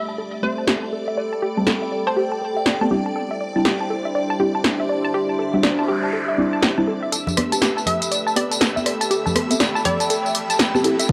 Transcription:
Already playing: analog synth pad A3 G4 B5, ambient pad A4 E5, string machine D5 D6, synth pluck E5
0.09 synth arpeggio sound A5
0.18 synth arpeggio sound A4
0.33 synth arpeggio sound E5
0.42 synth stab G3 A3 C4 G4, synth pluck C5, synth arpeggio sound D5
0.56 ambient pad G5, synth arpeggio sound A5
0.67 synth arpeggio sound G4, snare
0.75 ambient pad B5
0.83 synth arpeggio sound A5
0.93 synth arpeggio sound A4
1.08 synth arpeggio sound E5
1.17 analog synth pad A4, synth arpeggio sound D5
1.33 synth arpeggio sound A5
1.42 synth arpeggio sound G4
1.57 synth stab G3 A3 C4 A4, synth arpeggio sound A5
1.67 synth arpeggio sound A4, snare
1.82 synth arpeggio sound E5
1.92 synth arpeggio sound D5
2.07 synth pluck C5, synth arpeggio sound A5
2.17 synth arpeggio sound G4
2.32 synth arpeggio sound A5
2.41 synth arpeggio sound A4
2.57 synth arpeggio sound E5
2.66 synth arpeggio sound D5, snare
2.81 synth stab A3 B3 C4 G4, synth arpeggio sound A5
2.90 synth stab G3 C4 D4 E4, synth arpeggio sound G4
3.06 synth arpeggio sound A5
3.16 analog synth pad G3 D4 E4 C5, ambient pad D4, synth arpeggio sound A4
3.31 synth arpeggio sound E5
3.41 synth arpeggio sound D5
3.55 synth stab G3 C4 D4 E4, synth arpeggio sound A5
3.65 synth arpeggio sound G4, ambient pad G4, snare
3.81 synth arpeggio sound A5
3.85 ambient pad C6
3.90 synth arpeggio sound A4
4.05 synth arpeggio sound E5
4.15 synth arpeggio sound D5
4.30 synth arpeggio sound A5
4.39 synth stab G3 C4 D4 E4, synth arpeggio sound G4
4.55 synth arpeggio sound A5
4.59 ambient pad E5
4.64 synth arpeggio sound A4, snare
4.80 synth arpeggio sound E5
4.89 synth arpeggio sound D5
5.04 synth arpeggio sound A5
5.14 synth arpeggio sound G4, noise sweep
5.29 synth arpeggio sound A5
5.39 synth arpeggio sound A4
5.53 synth stab G3 C4 D4 F#4, synth arpeggio sound E5
5.63 synth arpeggio sound D5, snare
5.79 synth arpeggio sound A5
5.88 synth arpeggio sound G4
6.04 synth arpeggio sound A5
6.13 synth arpeggio sound A4
6.28 synth arpeggio sound E5
6.38 synth stab G3 C4 D4 E4, synth arpeggio sound D5
6.53 synth arpeggio sound A5
6.63 synth arpeggio sound G4, snare
6.78 synth stab G3 C4 D4 E4, synth arpeggio sound A5
6.88 synth arpeggio sound A4
7.03 synth arpeggio sound E5
7.12 analog synth pad A3 G4 B4, synth arpeggio sound A4, string machine E5 E6, closed hi-hat, tambourine, riser
7.26 ambient pad A4, synth arpeggio sound E5, tambourine, low conga
7.37 synth arpeggio sound D5, cross-stick, open hi-hat, high conga
7.52 synth stab B3 C4 G4, synth arpeggio sound A5, closed hi-hat, tambourine
7.62 synth arpeggio sound G4, snare, closed hi-hat, tambourine
7.77 synth arpeggio sound A5, tambourine
7.86 synth arpeggio sound A4, synth pluck E5, open hi-hat, low conga
8.02 synth arpeggio sound E5, closed hi-hat, tambourine
8.12 synth arpeggio sound D5, closed hi-hat, tambourine
8.27 synth arpeggio sound A5, tambourine
8.36 synth stab B3 C4 G4, synth arpeggio sound G4, synth pluck D5, ambient pad B5, open hi-hat
8.51 ambient pad G5, synth arpeggio sound A5, closed hi-hat, tambourine
8.61 synth arpeggio sound A4, snare, closed hi-hat, tambourine
8.76 synth arpeggio sound E5, tambourine, high conga
8.86 synth arpeggio sound D5, cross-stick, open hi-hat
9.01 synth arpeggio sound A5, closed hi-hat, tambourine
9.11 synth arpeggio sound G4, analog synth pad B5, closed hi-hat, tambourine
9.26 synth arpeggio sound A5, tambourine, low conga
9.35 synth arpeggio sound A4, cross-stick, open hi-hat, high conga
9.50 synth stab B3 C4 A4, synth arpeggio sound E5, closed hi-hat, tambourine
9.60 synth arpeggio sound D5, snare, closed hi-hat, tambourine
9.75 synth arpeggio sound A5, tambourine
9.85 synth arpeggio sound G4, synth pluck D5, open hi-hat, low conga
10.00 synth arpeggio sound A5, closed hi-hat, tambourine
10.10 synth arpeggio sound A4, closed hi-hat, tambourine
10.25 synth arpeggio sound E5, tambourine
10.35 synth arpeggio sound D5, open hi-hat
10.50 synth arpeggio sound A5, closed hi-hat, tambourine
10.59 synth arpeggio sound G4, snare, closed hi-hat, tambourine
10.74 synth stab B3 C4 G4, synth arpeggio sound A5, tambourine, high conga
10.84 synth stab C4 E4 G4, synth arpeggio sound A4, open hi-hat
10.99 synth arpeggio sound E5, closed hi-hat, tambourine
11.09 ambient pad D4, synth arpeggio sound D5, closed hi-hat

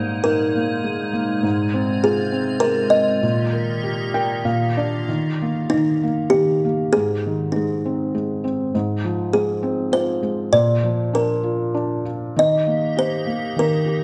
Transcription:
Already playing: felt piano G#2 A#3, ambient pad A#2 G#3 D#4, kalimba C5
0.24 felt piano D#4, kalimba A#4
0.55 felt piano A#3
0.84 felt piano G#3
1.13 felt piano A#3
1.43 felt piano G#2, ambient pad C3 F4
1.74 felt piano C4
2.03 felt piano F4, kalimba G#4
2.32 felt piano C4
2.60 felt piano G#3, kalimba A#4
2.90 felt piano C4, kalimba D#5
3.21 ambient pad A#2 D#3 A#3 G4, felt piano A#2
3.53 felt piano A#4
3.84 felt piano G4
4.14 felt piano A#4 G5
4.45 felt piano A#2 F5
4.77 felt piano D4 D5
5.09 felt piano D#3
5.42 felt piano A#3
5.70 felt piano D#3, kalimba D#4
6.03 felt piano A#3
6.30 felt piano D#3, kalimba G4
6.65 felt piano A#3
6.93 felt piano G#2, kalimba G#4
7.26 felt piano D#3
7.52 felt piano G#3, kalimba D#4
7.85 felt piano C4
8.15 felt piano G#3
8.44 felt piano C4
8.75 felt piano G#2
9.04 felt piano F3
9.33 felt piano G#3, kalimba G#4
9.63 felt piano C4
9.92 felt piano F4, kalimba C5
10.23 felt piano G#3
10.53 felt piano A#2, kalimba D5
10.83 felt piano F3
11.13 felt piano D4, kalimba A#4
11.43 felt piano F4
11.74 felt piano D4
12.05 felt piano F4
12.36 felt piano D#3, ambient pad D#3 A#3 G4, kalimba D#5
12.67 felt piano A#3
12.97 felt piano G4, kalimba C5
13.26 felt piano A#3
13.56 felt piano D#3, kalimba A#4
13.86 felt piano G4

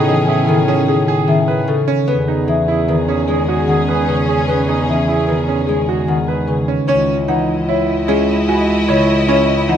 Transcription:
Already playing: bass clarinet A2, harp C#3 D#3 B3, string section C#4 G#4, grand piano D#4
0.08 harp E3, clarinet G#4, marimba D#5
0.27 grand piano E4, clarinet G#4
0.47 harp D#3, clarinet G#4, marimba A4
0.67 grand piano C#4, clarinet G#4
0.88 clarinet G#4, marimba G#4
1.08 clarinet G#4, grand piano G#4
1.28 harp D#3, clarinet G#4, marimba E5
1.48 clarinet G#4, grand piano B4
1.68 harp C#3, clarinet G#4, marimba A4
1.88 grand piano C#4
2.07 bass clarinet E2, harp B3, string section C#4 G#4, clarinet G#4, marimba B4
2.27 grand piano D#4, clarinet G#4
2.48 harp E3, clarinet G#4, marimba E5
2.68 grand piano E4, clarinet G#4
2.88 harp D#3, clarinet G#4, marimba B4
3.08 grand piano C#4, clarinet G#4
3.28 harp G#3, marimba G#4, clarinet G#4
3.48 grand piano F#4, clarinet G#4
3.68 harp D#3, clarinet G#4, marimba F#5
3.88 clarinet G#4, grand piano B4
4.07 harp C#3, clarinet G#4, marimba B4
4.28 grand piano C#4, clarinet G#4
4.48 harp B3, clarinet G#4, marimba B4
4.67 grand piano D#4, clarinet G#4
4.88 harp E3, clarinet G#4, marimba E5
5.08 grand piano E4, clarinet G#4
5.27 harp D#3, clarinet G#4, marimba B4
5.47 grand piano C#4, clarinet G#4
5.67 harp G#3, marimba G#4, clarinet G#4
5.87 grand piano F#4, clarinet G#4
6.08 harp D#3, clarinet G#4, marimba F#5
6.28 clarinet G#4, grand piano B4
6.48 harp C#3, clarinet G#4, marimba B4
6.68 grand piano C#4
6.88 bass clarinet C#2, harp C#4, grand piano C#4, string section E4 D#5, clarinet E4, marimba C#5
7.28 harp E3, grand piano D#4, marimba F#5
7.69 grand piano E4, marimba C#5
8.08 harp G#3, grand piano C#4, marimba G#4
8.48 grand piano F#4, marimba G#5
8.89 harp C#3, grand piano C#5, marimba C#5
9.28 harp C#4, grand piano C#4, marimba C#5
9.68 harp E3, grand piano D#4, marimba F#5

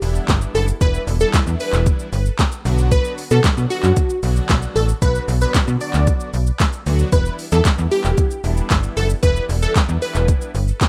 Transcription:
0.02 fm bass E1, analog polysynth E3 G3 B3 D4 E4, open hi-hat, shaker
0.15 shaker
0.29 fm bass G1, kick, snare, clap, closed hi-hat, shaker
0.41 shaker
0.55 fm bass F#1, digital synth lead A4, open hi-hat, shaker
0.68 shaker
0.81 fm bass E1, analog polysynth E3 G3 B3 D4 E4, digital synth lead B4, kick, closed hi-hat, shaker
0.94 shaker
1.07 fm bass E1, open hi-hat, shaker
1.20 analog polysynth E3 G3 B3 D4 E4, digital synth lead A4, shaker
1.33 fm bass E2, kick, snare, clap, closed hi-hat, shaker
1.47 fm bass E2, shaker
1.60 digital synth lead B4, open hi-hat, shaker
1.73 fm bass E1, clap, shaker
1.86 kick, closed hi-hat, shaker
1.99 shaker
2.13 fm bass G1, open hi-hat, shaker
2.26 shaker
2.39 kick, snare, clap, closed hi-hat, shaker
2.52 shaker
2.65 fm bass B1, analog polysynth D3 F#3 B3 D4 F#4, open hi-hat, shaker
2.78 shaker
2.91 digital synth lead B4, kick, closed hi-hat, shaker
3.05 shaker
3.18 open hi-hat, shaker
3.31 fm bass B2, analog polysynth D3 F#3 B3 D4 F#4, digital synth lead A4, shaker
3.44 fm bass B2, kick, snare, clap, closed hi-hat, shaker
3.57 fm bass B2, shaker
3.70 digital synth lead F#4, open hi-hat, shaker
3.83 fm bass F#2, clap, shaker
3.96 kick, closed hi-hat, shaker
4.10 shaker
4.23 fm bass B1, analog polysynth D3 F#3 B3 D4 F#4, open hi-hat, shaker
4.36 shaker
4.49 fm bass B1, kick, snare, clap, closed hi-hat, shaker
4.62 shaker
4.76 fm bass A1, digital synth lead A4, open hi-hat, shaker
4.89 shaker
5.02 fm bass B1, analog polysynth D3 F#3 B3 D4 F#4, digital synth lead B4, kick, closed hi-hat, shaker
5.15 shaker
5.28 fm bass B1, open hi-hat, shaker
5.41 analog polysynth D3 F#3 B3 D4 F#4, digital synth lead B4, shaker
5.54 fm bass B2, kick, snare, clap, closed hi-hat, shaker
5.68 fm bass B2, shaker
5.81 digital synth lead D5, open hi-hat, shaker
5.94 fm bass D2, clap, shaker
6.07 kick, closed hi-hat, shaker
6.20 shaker
6.34 fm bass B1, open hi-hat, shaker
6.47 shaker
6.60 kick, snare, clap, closed hi-hat, shaker
6.73 shaker
6.86 fm bass D2, analog polysynth D3 F#3 B3 D4 F#4, open hi-hat, shaker
6.99 shaker
7.12 fm bass E1, analog polysynth B3 D4 E4, digital synth lead B4, kick, closed hi-hat, shaker
7.26 shaker
7.39 open hi-hat, shaker
7.52 fm bass E2, analog polysynth E3 G3 B3 D4 E4, digital synth lead A4, shaker
7.65 fm bass E2, kick, snare, clap, closed hi-hat, shaker
7.78 fm bass E2, shaker
7.91 digital synth lead G4, open hi-hat, shaker
8.04 fm bass E1, clap, shaker
8.18 kick, closed hi-hat, shaker
8.31 shaker
8.44 fm bass E1, analog polysynth E3 G3 B3 D4 E4, open hi-hat, shaker
8.57 shaker
8.70 fm bass G1, kick, snare, clap, closed hi-hat, shaker
8.83 shaker
8.97 fm bass F#1, digital synth lead A4, open hi-hat, shaker
9.10 shaker
9.23 fm bass E1, analog polysynth E3 G3 B3 D4 E4, digital synth lead B4, kick, closed hi-hat, shaker
9.36 shaker
9.49 fm bass E1, open hi-hat, shaker
9.62 analog polysynth E3 G3 B3 D4 E4, digital synth lead A4, shaker
9.75 fm bass E2, kick, snare, clap, closed hi-hat, shaker
9.89 fm bass E2, shaker
10.02 digital synth lead B4, open hi-hat, shaker
10.15 fm bass E1, clap, shaker
10.28 kick, closed hi-hat, shaker
10.41 shaker
10.55 fm bass G1, open hi-hat, shaker
10.68 shaker
10.81 kick, snare, clap, closed hi-hat, shaker

